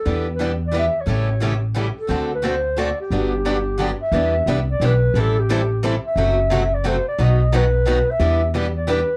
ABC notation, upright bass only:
X:1
M:3/4
L:1/8
Q:"Swing" 1/4=177
K:G
V:1 name="Upright bass" clef=bass
E,,6 | A,,,6 | D,,6 | G,,,6 |
[K:Em] E,,2 C,,2 B,,,2 | A,,,6 | F,,,6 | B,,,6 |
E,,6 |]